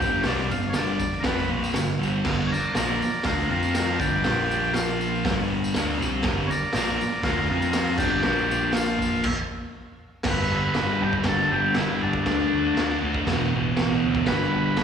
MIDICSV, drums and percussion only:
0, 0, Header, 1, 2, 480
1, 0, Start_track
1, 0, Tempo, 500835
1, 252, Time_signature, 4, 2, 24, 8
1, 14219, End_track
2, 0, Start_track
2, 0, Title_t, "Drums"
2, 0, Note_on_c, 9, 36, 107
2, 18, Note_on_c, 9, 54, 66
2, 93, Note_off_c, 9, 36, 0
2, 114, Note_off_c, 9, 54, 0
2, 224, Note_on_c, 9, 38, 111
2, 228, Note_on_c, 9, 46, 63
2, 256, Note_on_c, 9, 54, 26
2, 320, Note_off_c, 9, 38, 0
2, 324, Note_off_c, 9, 46, 0
2, 352, Note_off_c, 9, 54, 0
2, 371, Note_on_c, 9, 54, 28
2, 467, Note_off_c, 9, 54, 0
2, 492, Note_on_c, 9, 54, 68
2, 588, Note_off_c, 9, 54, 0
2, 601, Note_on_c, 9, 54, 27
2, 697, Note_off_c, 9, 54, 0
2, 702, Note_on_c, 9, 38, 113
2, 706, Note_on_c, 9, 46, 60
2, 708, Note_on_c, 9, 54, 101
2, 798, Note_off_c, 9, 38, 0
2, 802, Note_off_c, 9, 46, 0
2, 804, Note_off_c, 9, 54, 0
2, 828, Note_on_c, 9, 54, 27
2, 924, Note_off_c, 9, 54, 0
2, 954, Note_on_c, 9, 36, 74
2, 955, Note_on_c, 9, 54, 66
2, 1050, Note_off_c, 9, 36, 0
2, 1051, Note_off_c, 9, 54, 0
2, 1087, Note_on_c, 9, 54, 27
2, 1183, Note_off_c, 9, 54, 0
2, 1186, Note_on_c, 9, 38, 121
2, 1190, Note_on_c, 9, 46, 57
2, 1195, Note_on_c, 9, 36, 115
2, 1207, Note_on_c, 9, 54, 29
2, 1282, Note_off_c, 9, 38, 0
2, 1285, Note_off_c, 9, 46, 0
2, 1291, Note_off_c, 9, 36, 0
2, 1303, Note_off_c, 9, 54, 0
2, 1332, Note_on_c, 9, 54, 29
2, 1428, Note_off_c, 9, 54, 0
2, 1568, Note_on_c, 9, 54, 76
2, 1664, Note_off_c, 9, 54, 0
2, 1665, Note_on_c, 9, 38, 111
2, 1669, Note_on_c, 9, 46, 54
2, 1684, Note_on_c, 9, 54, 105
2, 1761, Note_off_c, 9, 38, 0
2, 1765, Note_off_c, 9, 46, 0
2, 1780, Note_off_c, 9, 54, 0
2, 1825, Note_on_c, 9, 54, 31
2, 1921, Note_off_c, 9, 54, 0
2, 1947, Note_on_c, 9, 54, 71
2, 2043, Note_off_c, 9, 54, 0
2, 2152, Note_on_c, 9, 38, 106
2, 2155, Note_on_c, 9, 36, 118
2, 2156, Note_on_c, 9, 49, 108
2, 2248, Note_off_c, 9, 38, 0
2, 2251, Note_off_c, 9, 36, 0
2, 2252, Note_off_c, 9, 49, 0
2, 2432, Note_on_c, 9, 54, 74
2, 2528, Note_off_c, 9, 54, 0
2, 2538, Note_on_c, 9, 54, 26
2, 2633, Note_on_c, 9, 38, 110
2, 2634, Note_off_c, 9, 54, 0
2, 2636, Note_on_c, 9, 46, 61
2, 2650, Note_on_c, 9, 54, 101
2, 2728, Note_off_c, 9, 38, 0
2, 2732, Note_off_c, 9, 46, 0
2, 2746, Note_off_c, 9, 54, 0
2, 2894, Note_on_c, 9, 54, 69
2, 2990, Note_off_c, 9, 54, 0
2, 3018, Note_on_c, 9, 54, 27
2, 3099, Note_on_c, 9, 38, 115
2, 3103, Note_on_c, 9, 46, 63
2, 3111, Note_on_c, 9, 36, 115
2, 3114, Note_off_c, 9, 54, 0
2, 3143, Note_on_c, 9, 54, 31
2, 3195, Note_off_c, 9, 38, 0
2, 3199, Note_off_c, 9, 46, 0
2, 3207, Note_off_c, 9, 36, 0
2, 3238, Note_off_c, 9, 54, 0
2, 3475, Note_on_c, 9, 54, 72
2, 3571, Note_off_c, 9, 54, 0
2, 3588, Note_on_c, 9, 38, 111
2, 3591, Note_on_c, 9, 46, 63
2, 3592, Note_on_c, 9, 54, 112
2, 3683, Note_off_c, 9, 38, 0
2, 3687, Note_off_c, 9, 46, 0
2, 3688, Note_off_c, 9, 54, 0
2, 3831, Note_on_c, 9, 36, 107
2, 3842, Note_on_c, 9, 54, 71
2, 3927, Note_off_c, 9, 36, 0
2, 3938, Note_off_c, 9, 54, 0
2, 4065, Note_on_c, 9, 38, 112
2, 4069, Note_on_c, 9, 46, 65
2, 4161, Note_off_c, 9, 38, 0
2, 4165, Note_off_c, 9, 46, 0
2, 4327, Note_on_c, 9, 54, 74
2, 4422, Note_off_c, 9, 54, 0
2, 4445, Note_on_c, 9, 54, 28
2, 4540, Note_on_c, 9, 38, 112
2, 4541, Note_off_c, 9, 54, 0
2, 4544, Note_on_c, 9, 46, 64
2, 4567, Note_on_c, 9, 54, 102
2, 4636, Note_off_c, 9, 38, 0
2, 4640, Note_off_c, 9, 46, 0
2, 4663, Note_off_c, 9, 54, 0
2, 4801, Note_on_c, 9, 54, 70
2, 4896, Note_off_c, 9, 54, 0
2, 4936, Note_on_c, 9, 54, 28
2, 5030, Note_on_c, 9, 36, 119
2, 5032, Note_off_c, 9, 54, 0
2, 5032, Note_on_c, 9, 38, 108
2, 5036, Note_on_c, 9, 46, 68
2, 5053, Note_on_c, 9, 54, 28
2, 5126, Note_off_c, 9, 36, 0
2, 5128, Note_off_c, 9, 38, 0
2, 5132, Note_off_c, 9, 46, 0
2, 5149, Note_off_c, 9, 54, 0
2, 5406, Note_on_c, 9, 54, 71
2, 5502, Note_off_c, 9, 54, 0
2, 5502, Note_on_c, 9, 38, 115
2, 5506, Note_on_c, 9, 46, 58
2, 5520, Note_on_c, 9, 54, 94
2, 5598, Note_off_c, 9, 38, 0
2, 5602, Note_off_c, 9, 46, 0
2, 5616, Note_off_c, 9, 54, 0
2, 5659, Note_on_c, 9, 54, 30
2, 5755, Note_off_c, 9, 54, 0
2, 5771, Note_on_c, 9, 54, 70
2, 5867, Note_off_c, 9, 54, 0
2, 5968, Note_on_c, 9, 38, 110
2, 5972, Note_on_c, 9, 46, 61
2, 5981, Note_on_c, 9, 36, 123
2, 6064, Note_off_c, 9, 38, 0
2, 6068, Note_off_c, 9, 46, 0
2, 6076, Note_off_c, 9, 36, 0
2, 6238, Note_on_c, 9, 54, 74
2, 6334, Note_off_c, 9, 54, 0
2, 6370, Note_on_c, 9, 54, 29
2, 6447, Note_on_c, 9, 38, 110
2, 6451, Note_on_c, 9, 46, 64
2, 6465, Note_off_c, 9, 54, 0
2, 6478, Note_on_c, 9, 54, 95
2, 6543, Note_off_c, 9, 38, 0
2, 6547, Note_off_c, 9, 46, 0
2, 6573, Note_off_c, 9, 54, 0
2, 6718, Note_on_c, 9, 54, 77
2, 6814, Note_off_c, 9, 54, 0
2, 6839, Note_on_c, 9, 54, 29
2, 6933, Note_on_c, 9, 38, 104
2, 6934, Note_on_c, 9, 36, 107
2, 6935, Note_off_c, 9, 54, 0
2, 6937, Note_on_c, 9, 46, 66
2, 6947, Note_on_c, 9, 54, 29
2, 7029, Note_off_c, 9, 36, 0
2, 7029, Note_off_c, 9, 38, 0
2, 7033, Note_off_c, 9, 46, 0
2, 7043, Note_off_c, 9, 54, 0
2, 7305, Note_on_c, 9, 54, 79
2, 7401, Note_off_c, 9, 54, 0
2, 7410, Note_on_c, 9, 38, 108
2, 7411, Note_on_c, 9, 54, 116
2, 7414, Note_on_c, 9, 46, 64
2, 7506, Note_off_c, 9, 38, 0
2, 7507, Note_off_c, 9, 54, 0
2, 7510, Note_off_c, 9, 46, 0
2, 7545, Note_on_c, 9, 54, 33
2, 7641, Note_off_c, 9, 54, 0
2, 7642, Note_on_c, 9, 49, 101
2, 7652, Note_on_c, 9, 36, 114
2, 7666, Note_on_c, 9, 54, 83
2, 7738, Note_off_c, 9, 49, 0
2, 7748, Note_off_c, 9, 36, 0
2, 7762, Note_off_c, 9, 54, 0
2, 7887, Note_on_c, 9, 38, 115
2, 7983, Note_off_c, 9, 38, 0
2, 8033, Note_on_c, 9, 54, 31
2, 8129, Note_off_c, 9, 54, 0
2, 8159, Note_on_c, 9, 54, 81
2, 8255, Note_off_c, 9, 54, 0
2, 8360, Note_on_c, 9, 38, 107
2, 8364, Note_on_c, 9, 46, 68
2, 8401, Note_on_c, 9, 54, 109
2, 8456, Note_off_c, 9, 38, 0
2, 8460, Note_off_c, 9, 46, 0
2, 8497, Note_off_c, 9, 54, 0
2, 8526, Note_on_c, 9, 54, 33
2, 8616, Note_on_c, 9, 36, 80
2, 8621, Note_off_c, 9, 54, 0
2, 8644, Note_on_c, 9, 54, 74
2, 8712, Note_off_c, 9, 36, 0
2, 8740, Note_off_c, 9, 54, 0
2, 8775, Note_on_c, 9, 54, 31
2, 8850, Note_on_c, 9, 57, 113
2, 8859, Note_on_c, 9, 36, 112
2, 8871, Note_off_c, 9, 54, 0
2, 8946, Note_off_c, 9, 57, 0
2, 8955, Note_off_c, 9, 36, 0
2, 9808, Note_on_c, 9, 38, 119
2, 9811, Note_on_c, 9, 49, 62
2, 9811, Note_on_c, 9, 57, 122
2, 9825, Note_on_c, 9, 36, 115
2, 9903, Note_off_c, 9, 38, 0
2, 9907, Note_off_c, 9, 49, 0
2, 9907, Note_off_c, 9, 57, 0
2, 9921, Note_off_c, 9, 36, 0
2, 10297, Note_on_c, 9, 38, 118
2, 10301, Note_on_c, 9, 49, 65
2, 10393, Note_off_c, 9, 38, 0
2, 10397, Note_off_c, 9, 49, 0
2, 10666, Note_on_c, 9, 36, 84
2, 10762, Note_off_c, 9, 36, 0
2, 10769, Note_on_c, 9, 38, 119
2, 10773, Note_on_c, 9, 49, 64
2, 10785, Note_on_c, 9, 36, 103
2, 10865, Note_off_c, 9, 38, 0
2, 10868, Note_off_c, 9, 49, 0
2, 10881, Note_off_c, 9, 36, 0
2, 11256, Note_on_c, 9, 38, 114
2, 11259, Note_on_c, 9, 49, 70
2, 11351, Note_off_c, 9, 38, 0
2, 11355, Note_off_c, 9, 49, 0
2, 11630, Note_on_c, 9, 36, 101
2, 11726, Note_off_c, 9, 36, 0
2, 11750, Note_on_c, 9, 36, 98
2, 11751, Note_on_c, 9, 38, 113
2, 11755, Note_on_c, 9, 49, 70
2, 11846, Note_off_c, 9, 36, 0
2, 11847, Note_off_c, 9, 38, 0
2, 11851, Note_off_c, 9, 49, 0
2, 12239, Note_on_c, 9, 38, 116
2, 12243, Note_on_c, 9, 49, 76
2, 12335, Note_off_c, 9, 38, 0
2, 12339, Note_off_c, 9, 49, 0
2, 12598, Note_on_c, 9, 36, 85
2, 12694, Note_off_c, 9, 36, 0
2, 12718, Note_on_c, 9, 36, 101
2, 12721, Note_on_c, 9, 38, 119
2, 12725, Note_on_c, 9, 49, 69
2, 12813, Note_off_c, 9, 36, 0
2, 12817, Note_off_c, 9, 38, 0
2, 12821, Note_off_c, 9, 49, 0
2, 13193, Note_on_c, 9, 38, 115
2, 13197, Note_on_c, 9, 49, 60
2, 13289, Note_off_c, 9, 38, 0
2, 13293, Note_off_c, 9, 49, 0
2, 13559, Note_on_c, 9, 36, 94
2, 13655, Note_off_c, 9, 36, 0
2, 13670, Note_on_c, 9, 38, 122
2, 13674, Note_on_c, 9, 49, 67
2, 13679, Note_on_c, 9, 36, 104
2, 13766, Note_off_c, 9, 38, 0
2, 13770, Note_off_c, 9, 49, 0
2, 13775, Note_off_c, 9, 36, 0
2, 14154, Note_on_c, 9, 38, 117
2, 14157, Note_on_c, 9, 49, 64
2, 14219, Note_off_c, 9, 38, 0
2, 14219, Note_off_c, 9, 49, 0
2, 14219, End_track
0, 0, End_of_file